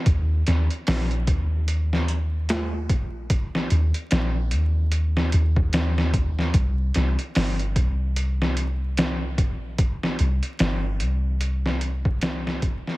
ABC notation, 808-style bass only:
X:1
M:4/4
L:1/8
Q:"Swing 16ths" 1/4=74
K:Cm
V:1 name="808-style bass" clef=bass
E,, E,, B,,, E,,4 B,,,- | B,,, E,, B,,, E,,2 E,,3 | C,, C,, G,,, C,,4 B,,,- | B,,, C,, G,,, C,,4 z |]